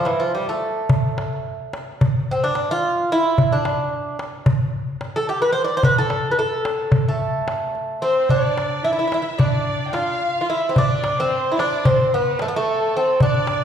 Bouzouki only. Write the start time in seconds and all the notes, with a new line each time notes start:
0.05 E3
0.20 F3
0.35 G3
0.49 A3
2.31 C4
2.44 D4
2.71 F4
3.12 E4
3.52 D4
5.16 A4
5.29 G4
5.42 B4
5.52 C5
5.64 D5
5.77 C5
5.84 B4
5.98 A4
6.31 B4
6.39 A4
7.08 A3
8.02 C4
8.30 D4
8.84 E4
8.93 E4
8.99 E4
9.07 E4
9.14 E4
9.22 E4
9.39 D4
9.93 F4
10.41 F4
10.50 E4
10.69 C4
10.78 D4
11.20 C4
11.52 E4
11.60 D4
11.85 C4
12.14 B3
12.42 A3
12.48 B3
12.56 A3
12.97 C4
13.23 D4